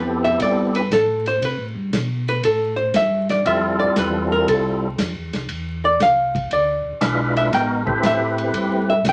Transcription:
Already playing: tonewheel organ F2 B3 C4 E4 G4 A4, hollow-body jazz guitar B4
0.24 hollow-body jazz guitar E5, ride
0.39 tonewheel organ G2, hollow-body jazz guitar D5, kick, ride
0.75 hollow-body jazz guitar B4, ride
0.91 tonewheel organ A2, hollow-body jazz guitar A4, kick, snare, hi-hat pedal, ride
1.26 hollow-body jazz guitar C5, ride
1.42 tonewheel organ C3, hollow-body jazz guitar B4, kick, ride
1.58 tonewheel organ A2
1.75 tonewheel organ G2
1.93 tonewheel organ B2, kick, snare, hi-hat pedal, ride
2.28 hollow-body jazz guitar B4, ride
2.43 tonewheel organ A2, hollow-body jazz guitar A4, kick, ride
2.76 hollow-body jazz guitar C5
2.94 tonewheel organ G2, hollow-body jazz guitar E5, kick, snare, hi-hat pedal, ride
3.29 hollow-body jazz guitar D5, snare, ride
3.45 tonewheel organ F2 G3 C4 E4 F4 A4, hollow-body jazz guitar E5, kick, ride
3.79 tonewheel organ F2, hollow-body jazz guitar D5
3.96 tonewheel organ E2, hollow-body jazz guitar B4, kick, snare, hi-hat pedal, ride
4.32 hollow-body jazz guitar A#4
4.47 tonewheel organ C2, hollow-body jazz guitar A4, kick, ride
4.98 tonewheel organ F2, kick, snare, hi-hat pedal, ride
5.15 tonewheel organ E2
5.32 tonewheel organ C2, snare, ride
5.49 tonewheel organ E2, kick, ride
5.85 hollow-body jazz guitar D5
6.00 tonewheel organ C2, hollow-body jazz guitar F5, kick, snare, hi-hat pedal, ride
6.35 kick, ride
6.50 tonewheel organ D2, hollow-body jazz guitar D5, kick, ride
6.85 tonewheel organ D2
7.01 tonewheel organ B1 G#3 D4 E4 F4 B4, kick, snare, hi-hat pedal, ride
7.37 hollow-body jazz guitar E5, ride
7.51 tonewheel organ A1 G#3 B3 D#4 F#4 A#4, hollow-body jazz guitar G5, kick, snare, ride
7.85 tonewheel organ A3 C4 E4 G4 B4, kick
8.02 tonewheel organ A2, kick, snare, hi-hat pedal, ride
8.06 hollow-body jazz guitar E5
8.38 ride
8.53 tonewheel organ G2, kick, ride
8.90 hollow-body jazz guitar E5
9.04 tonewheel organ C3, kick, snare, hi-hat pedal, ride
9.09 hollow-body jazz guitar G5

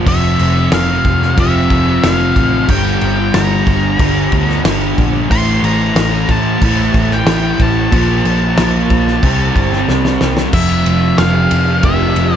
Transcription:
0.06 picked electric bass F1, distorted electric guitar F2 C3 F3, lead electric guitar E5, kick, crash
0.39 picked electric bass F1, crash
0.72 picked electric bass F1, lead electric guitar F5, snare, crash
1.05 picked electric bass F2, kick, crash
1.22 snare
1.37 picked electric bass F1, distorted electric guitar F2 C3 F3, lead electric guitar E5, kick, crash
1.70 picked electric bass F1, kick, crash
2.03 picked electric bass F1, lead electric guitar F5, snare, crash
2.36 picked electric bass A1, kick, crash
2.69 picked electric bass G1, distorted electric guitar G2 D3 G3, lead electric guitar G5, kick, crash
3.01 picked electric bass G1, crash
3.34 picked electric bass G1, lead electric guitar A#5, snare, crash
3.67 picked electric bass G1, kick, crash
3.99 picked electric bass G1, distorted electric guitar G2 D3 G3, kick, crash
4.32 picked electric bass D2, kick, crash
4.49 snare
4.65 picked electric bass G1, snare, crash
4.98 picked electric bass A#1, kick, crash
5.30 picked electric bass A1, distorted electric guitar A2 E3 A3, lead electric guitar C6, kick, crash
5.63 picked electric bass A1, lead electric guitar A#5, crash
5.96 picked electric bass A1, snare, crash
6.29 picked electric bass A2, lead electric guitar A5, kick, crash
6.62 picked electric bass A1, distorted electric guitar A2 E3 A3, kick, crash
6.94 picked electric bass A1, kick, crash
7.11 lead electric guitar G5, snare
7.26 picked electric bass A1, snare, crash
7.60 picked electric bass A1, lead electric guitar A5, kick, crash
7.91 picked electric bass A#1, distorted electric guitar A#2 F3 A#3, kick, crash
8.25 picked electric bass A#1, crash
8.57 picked electric bass A#1, snare, crash
8.90 picked electric bass A#1, kick, crash
9.07 snare
9.23 picked electric bass C2, distorted electric guitar C3 G3 C4, kick, crash
9.56 picked electric bass G1, kick, crash
9.72 snare
9.88 picked electric bass C2, snare
10.05 snare
10.21 picked electric bass C2, snare
10.37 snare
10.53 picked electric bass F1, distorted electric guitar F2 C3 F3, lead electric guitar E5, kick, crash
10.85 picked electric bass F1, ride
11.18 picked electric bass F1, lead electric guitar F5, snare, ride
11.51 picked electric bass F2, ride
11.83 picked electric bass F1, distorted electric guitar F2 C3 F3, lead electric guitar E5, kick, ride
12.16 picked electric bass F1, ride

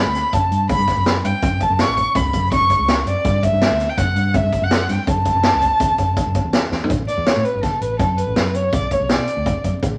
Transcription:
Already playing: violin B5
0.05 fingered electric bass D2
0.15 snare, closed hi-hat
0.33 fingered electric bass F#2, violin A5, kick, closed hi-hat
0.51 fingered electric bass G2, closed hi-hat
0.69 violin B5, kick, closed hi-hat
0.78 fingered electric bass G2
0.88 kick, snare, closed hi-hat
0.97 fingered electric bass F#2
1.06 snare, closed hi-hat
1.24 fingered electric bass G2, violin G5, closed hi-hat
1.42 fingered electric bass F#2, kick, closed hi-hat
1.60 violin A5, kick, closed hi-hat
1.70 fingered electric bass F#2
1.79 violin C#6, snare, closed hi-hat
1.87 fingered electric bass A1
1.97 kick, closed hi-hat
2.15 fingered electric bass C#2, violin B5, kick, snare, closed hi-hat
2.33 fingered electric bass F#2, kick, closed hi-hat
2.52 violin C#6, kick, closed hi-hat
2.60 fingered electric bass F#2
2.70 kick, closed hi-hat
2.79 fingered electric bass C#2
2.88 snare, closed hi-hat
3.06 fingered electric bass F#2, violin D5, closed hi-hat
3.24 fingered electric bass G2, kick, closed hi-hat
3.43 violin E5, kick, closed hi-hat
3.52 fingered electric bass G2
3.61 snare, closed hi-hat
3.70 fingered electric bass D2
3.80 snare, closed hi-hat
3.89 violin G5
3.97 fingered electric bass F#2, violin F#5, kick, snare, closed hi-hat
4.16 fingered electric bass G2, closed hi-hat
4.34 violin E5, kick, closed hi-hat
4.43 fingered electric bass G2
4.53 kick, closed hi-hat
4.62 fingered electric bass F#2, violin F#5
4.71 snare, closed hi-hat
4.89 fingered electric bass G2, violin G5, snare, closed hi-hat
5.07 fingered electric bass F#2, violin A5, kick, closed hi-hat
5.25 kick, closed hi-hat
5.35 fingered electric bass F#2
5.43 snare, closed hi-hat
5.53 fingered electric bass C#2
5.62 kick, closed hi-hat
5.80 fingered electric bass E2, kick, closed hi-hat
5.98 fingered electric bass F#2, kick, closed hi-hat
6.17 kick, closed hi-hat
6.26 fingered electric bass F#2
6.35 kick, closed hi-hat
6.44 fingered electric bass E2
6.53 snare, closed hi-hat
6.71 fingered electric bass E2, snare
6.84 floor tom
6.90 fingered electric bass A1, kick, closed hi-hat
7.08 violin D5, closed hi-hat
7.17 fingered electric bass E2
7.26 violin C#5, snare, closed hi-hat
7.36 fingered electric bass A2
7.45 violin B4, closed hi-hat
7.54 fingered electric bass G1
7.63 violin A4, kick, snare, closed hi-hat
7.81 fingered electric bass A1, violin B4, closed hi-hat
7.99 fingered electric bass F#2, violin A4, kick, closed hi-hat
8.18 violin B4, closed hi-hat
8.27 fingered electric bass A1
8.36 fingered electric bass F#2, snare, closed hi-hat
8.54 violin C#5, closed hi-hat
8.73 fingered electric bass B1, violin D5, kick, closed hi-hat
8.91 violin C#5, kick, closed hi-hat
9.00 fingered electric bass B1
9.09 violin D5, snare, closed hi-hat
9.18 fingered electric bass B2
9.28 closed hi-hat
9.37 fingered electric bass D2
9.46 kick, closed hi-hat
9.64 fingered electric bass F#2, kick, closed hi-hat
9.83 fingered electric bass A1, kick, closed hi-hat

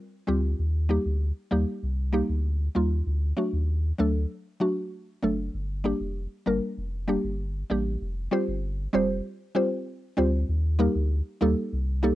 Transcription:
0.27 sub bass D2, synth pluck G3 C4 F4 G4
0.59 sub bass D#2
0.89 synth pluck G3 A#3 D#4 G4
1.05 sub bass D2
1.51 sub bass D#2, synth pluck G3 A#3 D#4 G4
1.83 sub bass C2
2.13 synth pluck G3 A#3 D#4 G4
2.29 sub bass D2
2.75 sub bass D#2, synth pluck G3 A#3 D#4 F4
3.06 sub bass D2
3.37 synth pluck F#3 A3 D4 F#4
3.53 sub bass D#2
3.98 sub bass D2, synth pluck F#3 A3 D4 A4
4.60 synth pluck F#3 A3 D4 F#4
5.23 sub bass F#1, synth pluck F#3 A3 D4 A4
5.54 sub bass G1
5.84 synth pluck G3 A#3 D4 G4
6.00 sub bass F1
6.46 sub bass G1, synth pluck G3 A#3 D4 A#4
6.78 sub bass F1
7.08 synth pluck G3 A#3 D4 G4
7.24 sub bass G1
7.70 sub bass A1, synth pluck G3 A#3 D4 G4
8.01 sub bass F1
8.31 synth pluck G3 C4 F4 G4 C5
8.48 sub bass G1
8.93 sub bass F1, synth pluck G3 C4 F4 G4 C5
9.55 synth pluck G3 C4 F4 G4 C5
10.17 sub bass D2, synth pluck G3 C4 F4 G4 C5
10.49 sub bass D#2
10.79 synth pluck G3 A#3 D#4 G4 A#4
10.95 sub bass D2
11.41 sub bass D#2, synth pluck G3 A#3 D#4 G4 A4
11.72 sub bass C2
12.03 synth pluck G3 A#3 D#4 G4 A4

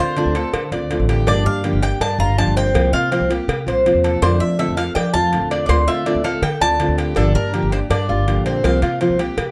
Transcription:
0.00 upright bass D3, nylon-string guitar A3 C4 F4, cuban tres F4 C5
0.17 nylon-string guitar D3 A3 C4 F4, cuban tres D4, cowbell
0.25 upright bass D2
0.35 nylon-string guitar A3 C4 F4, cuban tres A4, cowbell
0.53 upright bass D3, muted nylon-string guitar stroke, cowbell
0.72 upright bass D2, nylon-string guitar A3 C4 F4, cuban tres D5, cowbell
0.90 nylon-string guitar D3 A3 C4 F4, cowbell
1.00 upright bass A1
1.09 cuban tres G4, cowbell
1.27 upright bass G1, nylon-string guitar D3 F3 A#3 D4 G4, cuban tres D4 D5, cowbell
1.45 upright bass G2, nylon-string guitar A#3 G4, cuban tres F5
1.64 nylon-string guitar D3 F3 A#3 D4 G4, cuban tres G4, cowbell
1.73 upright bass G1
1.82 nylon-string guitar A#3 D4 G4, cuban tres G5, cowbell
2.00 upright bass G2, cuban tres D4 A5, muted nylon-string guitar stroke, cowbell
2.19 upright bass G1, nylon-string guitar A#3 D4 G4, cuban tres F4 A#5
2.37 nylon-string guitar D3 F3 A#3 D4 G4, cuban tres A5, cowbell
2.47 upright bass G1
2.57 cuban tres C4 G5, cowbell
2.74 upright bass C2, nylon-string guitar C3 F3 A#3 C4 F4, cowbell
2.93 upright bass C3, nylon-string guitar A#3 C4 F4, cuban tres F4 F5, cowbell
3.11 nylon-string guitar C3 F3 A#3 C4 F4, cuban tres C4, cowbell
3.20 upright bass C2
3.30 nylon-string guitar A#3 C4 F4, cuban tres G4, cowbell
3.48 upright bass C3, muted nylon-string guitar stroke, cowbell
3.66 upright bass C2, nylon-string guitar A#3 C4 F4, cuban tres C5, cowbell
3.85 nylon-string guitar C3 F3 A#3 C4 F4, cowbell
3.94 upright bass E2
4.04 cuban tres A4, cowbell
4.22 upright bass F2, nylon-string guitar D3 A3 C4 F4, cuban tres D4 C5, cowbell
4.40 upright bass F3, nylon-string guitar A3 C4 F4, cuban tres E5
4.59 nylon-string guitar D3 A3 C4 F4, cuban tres A4 E5, cowbell
4.68 upright bass F2
4.77 nylon-string guitar A3 C4 F4, cuban tres F5, cowbell
4.95 upright bass F3, cuban tres D4 G5, muted nylon-string guitar stroke, cowbell
5.14 upright bass F2, nylon-string guitar A3 C4 F4, cuban tres F4 A5
5.33 nylon-string guitar D3 A3 C4 F4, cowbell
5.41 upright bass E2
5.51 cuban tres D4, cowbell
5.66 upright bass D2, nylon-string guitar D3 A3, cuban tres C5 D5, cowbell
5.70 nylon-string guitar C4 F4
5.87 upright bass D3, nylon-string guitar A3 C4 F4, cuban tres F4 E5, cowbell
6.06 nylon-string guitar D3 A3 C4 F4, cuban tres D4, cowbell
6.15 upright bass D2
6.24 nylon-string guitar A3 C4 F4, cuban tres A4 F5, cowbell
6.42 upright bass D3, cuban tres G5, cowbell
6.60 upright bass D2, nylon-string guitar A3 C4 F4, cuban tres D5 A5, cowbell
6.80 nylon-string guitar D3 A3 C4 F4, cowbell
6.88 upright bass D2
6.98 cuban tres G4, cowbell
7.16 upright bass G1, nylon-string guitar D3 F3 A#3 D4 G4, cuban tres D4 A4, cowbell
7.34 upright bass G2, nylon-string guitar A#3 D4 G4, cuban tres A#4
7.53 nylon-string guitar D3 F3 A#3 D4 G4, cuban tres G4, cowbell
7.62 upright bass G1
7.72 nylon-string guitar A#3 D4 G4, cuban tres C5, cowbell
7.90 upright bass G2, cuban tres D4 D5, muted nylon-string guitar stroke, cowbell
8.09 upright bass G1, nylon-string guitar A#3 D4 G4, cuban tres F4
8.27 nylon-string guitar D3 F3 A#3 D4 G4, cowbell
8.36 upright bass A#1
8.46 cuban tres C4, cowbell
8.64 upright bass C2, nylon-string guitar C3 F3 A#3 C4 F4, cuban tres F5, cowbell
8.82 upright bass C3, nylon-string guitar A#3 C4 F4, cuban tres F4, cowbell
9.01 nylon-string guitar C3 F3 A#3 C4 F4, cuban tres C4, cowbell
9.10 upright bass C2
9.19 nylon-string guitar A#3 C4 F4, cuban tres G4, cowbell
9.37 upright bass C3, muted nylon-string guitar stroke, cowbell

